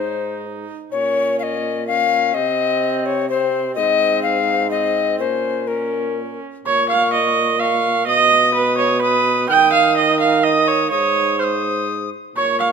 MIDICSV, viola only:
0, 0, Header, 1, 2, 480
1, 0, Start_track
1, 0, Key_signature, -5, "minor"
1, 0, Tempo, 476569
1, 934, Time_signature, 3, 2, 24, 8
1, 12813, End_track
2, 0, Start_track
2, 0, Title_t, "Viola"
2, 0, Program_c, 0, 41
2, 0, Note_on_c, 0, 63, 54
2, 714, Note_off_c, 0, 63, 0
2, 940, Note_on_c, 0, 61, 55
2, 1857, Note_off_c, 0, 61, 0
2, 1901, Note_on_c, 0, 61, 52
2, 2380, Note_on_c, 0, 60, 64
2, 2396, Note_off_c, 0, 61, 0
2, 3329, Note_off_c, 0, 60, 0
2, 3334, Note_on_c, 0, 60, 59
2, 3795, Note_off_c, 0, 60, 0
2, 3807, Note_on_c, 0, 60, 64
2, 4740, Note_off_c, 0, 60, 0
2, 4753, Note_on_c, 0, 60, 52
2, 5241, Note_on_c, 0, 61, 47
2, 5256, Note_off_c, 0, 60, 0
2, 5725, Note_off_c, 0, 61, 0
2, 5738, Note_on_c, 0, 61, 52
2, 6483, Note_off_c, 0, 61, 0
2, 6708, Note_on_c, 0, 73, 103
2, 6926, Note_off_c, 0, 73, 0
2, 6942, Note_on_c, 0, 77, 95
2, 7174, Note_off_c, 0, 77, 0
2, 7182, Note_on_c, 0, 75, 91
2, 7652, Note_on_c, 0, 77, 91
2, 7667, Note_off_c, 0, 75, 0
2, 8121, Note_off_c, 0, 77, 0
2, 8127, Note_on_c, 0, 75, 114
2, 8594, Note_off_c, 0, 75, 0
2, 8602, Note_on_c, 0, 71, 101
2, 8831, Note_off_c, 0, 71, 0
2, 8837, Note_on_c, 0, 73, 96
2, 9074, Note_off_c, 0, 73, 0
2, 9081, Note_on_c, 0, 71, 99
2, 9548, Note_off_c, 0, 71, 0
2, 9565, Note_on_c, 0, 79, 117
2, 9788, Note_off_c, 0, 79, 0
2, 9794, Note_on_c, 0, 77, 107
2, 10029, Note_off_c, 0, 77, 0
2, 10045, Note_on_c, 0, 75, 102
2, 10268, Note_off_c, 0, 75, 0
2, 10274, Note_on_c, 0, 77, 94
2, 10505, Note_on_c, 0, 75, 89
2, 10520, Note_off_c, 0, 77, 0
2, 10751, Note_on_c, 0, 73, 87
2, 10767, Note_off_c, 0, 75, 0
2, 10978, Note_off_c, 0, 73, 0
2, 10984, Note_on_c, 0, 73, 99
2, 11476, Note_on_c, 0, 72, 74
2, 11491, Note_off_c, 0, 73, 0
2, 11959, Note_off_c, 0, 72, 0
2, 12452, Note_on_c, 0, 73, 91
2, 12671, Note_off_c, 0, 73, 0
2, 12686, Note_on_c, 0, 77, 91
2, 12767, Note_off_c, 0, 77, 0
2, 12813, End_track
0, 0, End_of_file